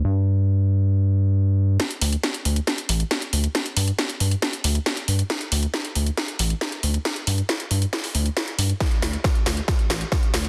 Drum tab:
HH |----------------|xxoxxxoxxxoxxxox|xxoxxxoxxxoxxxox|xxoxxxoxxxoxxxox|
SD |----------------|o---o---o---o---|o---o---o---o---|o---o---o---o---|
T2 |----------------|----------------|----------------|----------------|
BD |----------------|----------------|----------------|----------------|

HH |xxoxxxoxxooxxxox|xxoxxxoxxxoxxxox|
SD |o---o---o---o---|o-o-o-o-o-o-o-o-|
T2 |----------------|---------o-----o|
BD |----------------|o---o---o---o---|